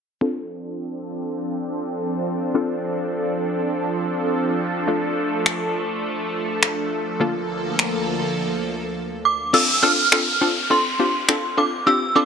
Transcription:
0.21 F3 C4 D4 F4 A4
2.54 C4 D4 F4 A4
4.87 A3 D4 F4 A4
5.46 finger snap
6.63 finger snap
7.20 D2 D3 F3 A#3 D4 F4 A4
7.79 finger snap
9.25 D6
9.53 C4 D4 F4 A4 E6, crash, downlifter
9.82 C4 D4 F4 A4 F6
10.12 C4 D4 F4 A4, finger snap
10.41 C4 D4 F4 A4
10.70 C4 D4 F4 A4 C6
10.99 C4 D4 F4 G4
11.28 C4 D4 F4 A4, finger snap
11.57 C4 D4 F4 A4 D6
11.86 C4 D4 F4 G4 E6
12.15 C4 D4 F4 A4 D6

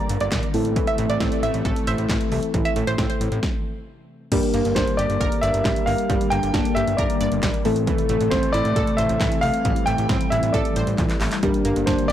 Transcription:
Already playing: D3 G3 A#3 D4 G4 A#4 A#5
0.09 G1, closed hi-hat
0.20 G1 D5, closed hi-hat
0.32 A#1, kick, snare, clap, closed hi-hat
0.43 closed hi-hat
0.54 A1 C3 E3 A3 C4 E4 A4, open hi-hat
0.65 closed hi-hat
0.76 E3, kick, closed hi-hat
0.87 E5, closed hi-hat
0.98 A1 A3, closed hi-hat
1.10 A1 D5, closed hi-hat
1.20 A1 C4, kick, snare, closed hi-hat
1.32 closed hi-hat
1.43 A1 E5, closed hi-hat
1.54 A1, closed hi-hat
1.65 A1 A4, kick, closed hi-hat
1.76 closed hi-hat
1.87 A1 C5 E5, closed hi-hat
1.98 A1, closed hi-hat
2.09 A1 E3, kick, snare, clap, closed hi-hat
2.21 closed hi-hat
2.32 C2 A3, open hi-hat
2.43 closed hi-hat
2.54 A1 E3, kick, closed hi-hat
2.65 E5, closed hi-hat
2.76 A1 A3, closed hi-hat
2.87 A1 C5, closed hi-hat
2.98 A1 C4, kick, snare, closed hi-hat
3.10 closed hi-hat
3.21 A1, closed hi-hat
3.32 A1, closed hi-hat
3.43 kick, snare
4.32 G1 D3 G3 A#3 D4 G4 A#4, kick, closed hi-hat, crash
4.43 closed hi-hat
4.54 G1 A#3, closed hi-hat
4.65 G1, closed hi-hat
4.75 G1 D4 C5, kick, snare, closed hi-hat
4.87 closed hi-hat
4.97 G1 G4 D5, closed hi-hat
5.10 G1, closed hi-hat
5.21 G1 A#4, kick, closed hi-hat
5.32 closed hi-hat
5.41 G1 D5 E5, closed hi-hat
5.54 G1, closed hi-hat
5.65 A1 G3, kick, snare, clap, closed hi-hat
5.76 closed hi-hat
5.86 G1 A#3 F5, open hi-hat
5.98 closed hi-hat
6.10 G1 G3, kick, closed hi-hat
6.21 closed hi-hat
6.30 G1 A#3 G5, closed hi-hat
6.43 G1, closed hi-hat
6.54 G1 D4, kick, snare, closed hi-hat
6.65 closed hi-hat
6.75 G1 G4 E5, closed hi-hat
6.87 G1, closed hi-hat
6.97 G1 A#4 D5, kick, closed hi-hat
7.10 closed hi-hat
7.21 G1 D5, closed hi-hat
7.32 G1, closed hi-hat
7.43 A#1 G3, kick, snare, clap, closed hi-hat
7.54 closed hi-hat
7.65 A1 C3 E3 A3 C4 A4, open hi-hat
7.76 closed hi-hat
7.87 E3, kick, closed hi-hat
7.98 closed hi-hat
8.09 A1 A3, closed hi-hat
8.21 A1, closed hi-hat
8.30 A1 C4 C5, kick, snare, closed hi-hat
8.43 closed hi-hat
8.53 A1 E4 D5, closed hi-hat
8.65 A1, closed hi-hat
8.76 A1 A4, kick, closed hi-hat
8.87 closed hi-hat
8.97 A1 C5 E5, closed hi-hat
9.09 A1, closed hi-hat
9.21 A1 E3, kick, snare, clap, closed hi-hat
9.32 closed hi-hat
9.41 C2 G3 A3 F5, open hi-hat
9.54 closed hi-hat
9.65 A1 E3, kick, closed hi-hat
9.76 closed hi-hat
9.86 A1 A3 G5, closed hi-hat
9.98 A1, closed hi-hat
10.09 A1 C4, kick, snare, closed hi-hat
10.21 closed hi-hat
10.30 A1 E4 E5, closed hi-hat
10.43 A1, closed hi-hat
10.53 A1 A4 D5, kick, closed hi-hat
10.65 closed hi-hat
10.76 A1 C5, closed hi-hat
10.87 A1, closed hi-hat
10.98 A#1 E3, kick, clap, closed hi-hat
11.09 clap, closed hi-hat
11.21 A1 A3, clap, open hi-hat
11.31 clap, closed hi-hat
11.43 G1 D3 G3 A#3 D4 G4 A#4, kick, closed hi-hat
11.54 closed hi-hat
11.65 G1 A#3, closed hi-hat
11.76 G1, closed hi-hat
11.86 G1 D4 C5, kick, snare, closed hi-hat
11.99 closed hi-hat
12.08 D5

